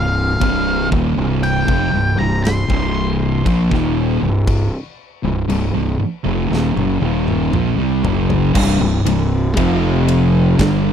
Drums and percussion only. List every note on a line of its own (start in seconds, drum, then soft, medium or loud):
0.41 kick loud
0.41 crash medium
0.92 kick loud
1.43 crash medium
1.68 kick loud
2.45 snare loud
2.45 crash medium
2.70 kick medium
3.46 kick loud
3.46 crash medium
3.71 kick loud
3.71 snare soft
4.47 kick loud
4.47 crash medium
5.50 crash medium
6.53 snare medium
6.77 high tom medium
7.28 mid tom medium
7.53 mid tom medium
8.05 floor tom medium
8.30 floor tom medium
8.55 kick loud
8.55 crash loud
9.06 ride medium
9.57 kick loud
9.57 ride loud
10.08 ride medium
10.59 kick loud
10.59 snare loud
10.59 ride loud